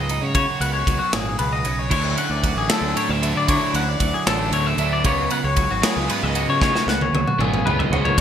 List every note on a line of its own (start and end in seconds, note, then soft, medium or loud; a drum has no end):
0.00 0.19 C#2 loud
0.00 0.35 G#2 medium
0.00 0.86 F#3 medium
0.00 0.60 B3 medium
0.00 0.10 F#4 medium
0.00 0.21 D#5 medium
0.09 0.24 D#4 medium
0.09 ride medium
0.21 0.45 C#3 medium
0.21 0.35 F#4 medium
0.21 0.34 C#5 medium
0.35 0.87 C#3 medium
0.35 1.90 F#4 medium
0.35 0.61 C#5 medium
0.35 kick loud
0.35 ride medium
0.60 0.84 C#2 medium
0.60 1.91 B3 medium
0.60 0.73 F#5 medium
0.60 ride medium
0.74 1.00 C#5 medium
0.86 0.98 C#2 medium
0.86 2.44 F#3 medium
0.86 kick medium
0.86 ride medium
0.99 1.12 F#4 medium
1.12 1.36 G#1 medium
1.12 1.38 A#2 medium
1.12 1.38 G#4 medium
1.12 snare loud
1.12 ride medium
1.39 1.63 C#2 medium
1.39 1.65 B2 medium
1.39 1.52 B4 medium
1.39 ride medium
1.53 1.79 D#5 medium
1.65 1.88 B1 medium
1.65 1.89 C#3 medium
1.65 ride medium
1.79 1.91 C#5 medium
1.89 2.14 D2 loud
1.89 3.43 D3 medium
1.89 2.25 D3 medium
1.89 2.25 F#3 medium
1.89 2.25 A3 medium
1.89 2.25 D4 medium
1.89 3.21 E4 medium
1.89 2.18 C#5 medium
1.89 kick loud
1.89 crash medium
2.17 3.52 C#4 medium
2.17 2.31 F#5 medium
2.17 ride medium
2.30 2.53 D2 medium
2.30 2.57 D5 medium
2.44 4.00 F#3 medium
2.44 kick medium
2.44 ride medium
2.55 2.67 A1 medium
2.55 2.70 G#4 medium
2.69 2.94 D3 medium
2.69 2.95 F#3 medium
2.69 2.95 A3 loud
2.69 2.95 D4 loud
2.69 2.96 A4 medium
2.69 snare loud
2.69 ride loud
2.81 2.93 D2 medium
2.95 3.44 A2 medium
2.95 3.21 D3 medium
2.95 3.21 F#3 medium
2.95 3.21 A3 medium
2.95 3.20 D4 medium
2.95 3.11 C#5 medium
2.95 ride medium
3.09 3.32 D2 loud
3.09 3.35 E5 medium
3.21 3.46 D3 medium
3.21 3.47 F#3 medium
3.21 3.47 A3 medium
3.21 3.47 D4 medium
3.21 3.45 E4 medium
3.21 ride medium
3.34 3.57 D3 medium
3.34 3.49 D5 medium
3.48 3.81 D3 medium
3.48 5.02 D3 medium
3.48 3.82 F#3 medium
3.48 3.82 A3 medium
3.48 3.82 D4 medium
3.48 4.78 E4 medium
3.48 3.74 C#5 medium
3.48 kick loud
3.48 ride medium
3.74 3.97 D2 loud
3.74 5.30 C#4 medium
3.74 3.89 F#5 medium
3.74 ride medium
3.89 4.14 D5 medium
4.00 4.11 D2 medium
4.00 5.56 F#3 medium
4.00 kick medium
4.00 ride medium
4.14 4.26 G#4 medium
4.27 4.49 A1 medium
4.27 4.50 D3 medium
4.27 4.51 F#3 medium
4.27 4.52 A3 medium
4.27 4.51 D4 loud
4.27 4.53 A4 medium
4.27 snare loud
4.27 ride medium
4.51 4.74 D2 medium
4.51 5.01 A2 medium
4.51 4.78 D3 medium
4.51 4.78 F#3 medium
4.51 4.78 A3 medium
4.51 4.77 D4 medium
4.51 4.66 C#5 medium
4.51 ride medium
4.66 4.92 E5 medium
4.77 5.01 D2 medium
4.77 5.03 D3 medium
4.77 5.04 F#3 medium
4.77 5.04 A3 medium
4.77 5.04 D4 medium
4.77 5.01 E4 medium
4.77 ride medium
4.93 5.05 D5 medium
5.04 5.27 C#2 loud
5.04 5.38 C#3 medium
5.04 5.57 C#3 medium
5.04 5.38 G#3 medium
5.04 5.38 B3 loud
5.04 5.38 F4 medium
5.04 5.31 C#5 medium
5.04 kick loud
5.04 ride medium
5.30 6.87 B3 medium
5.30 5.44 F#5 medium
5.30 ride medium
5.44 5.67 C#2 medium
5.44 5.70 C#5 medium
5.56 7.12 F#3 medium
5.56 kick medium
5.56 ride medium
5.70 5.81 G#1 medium
5.70 5.83 F#4 medium
5.82 6.06 C#3 medium
5.82 6.06 G#3 medium
5.82 6.07 B3 medium
5.82 6.07 F4 medium
5.82 6.10 G#4 medium
5.82 snare loud
5.82 ride loud
5.97 6.08 C#2 medium
6.07 6.61 G#2 medium
6.07 6.34 C#3 medium
6.07 6.34 G#3 medium
6.07 6.35 B3 medium
6.07 6.34 F4 medium
6.07 6.22 B4 medium
6.07 ride medium
6.23 6.45 C#2 loud
6.23 6.49 D#5 medium
6.35 6.60 C#3 medium
6.35 6.61 G#3 medium
6.35 6.61 B3 medium
6.35 6.61 F4 medium
6.35 6.62 F#4 medium
6.35 ride medium
6.48 6.71 C#3 medium
6.48 6.61 C#5 medium
6.61 6.95 C#3 medium
6.61 7.13 C#3 medium
6.61 6.96 G#3 medium
6.61 6.96 B3 medium
6.61 6.74 D#4 medium
6.61 6.96 F4 medium
6.61 6.88 C#5 loud
6.61 kick loud
6.61 snare medium
6.74 7.91 F#4 medium
6.74 snare medium
6.87 7.10 C#2 medium
6.87 8.18 B3 medium
6.87 7.01 F#5 medium
6.87 snare medium
7.01 7.27 C#5 medium
7.01 high tom medium
7.13 7.24 C#2 medium
7.13 8.21 F#3 medium
7.13 high tom medium
7.27 7.41 F#4 medium
7.27 mid tom medium
7.39 7.62 G#1 medium
7.39 7.64 C#3 medium
7.39 7.65 G#3 medium
7.39 7.65 B3 loud
7.39 7.65 F4 loud
7.39 7.66 G#4 medium
7.39 mid tom medium
7.54 mid tom medium
7.65 7.88 C#2 medium
7.65 8.17 G#2 medium
7.65 7.91 C#3 medium
7.65 7.92 G#3 medium
7.65 7.92 B3 medium
7.65 7.92 F4 medium
7.65 7.79 B4 medium
7.65 mid tom loud
7.79 8.04 D#5 medium
7.79 floor tom medium
7.91 8.14 C#2 medium
7.91 8.17 C#3 medium
7.91 8.18 G#3 medium
7.91 8.18 B3 medium
7.91 8.18 F4 medium
7.91 8.15 F#4 medium
7.91 floor tom loud
8.05 8.17 C#5 medium
8.05 floor tom medium
8.17 8.21 D2 loud
8.17 8.21 D3 medium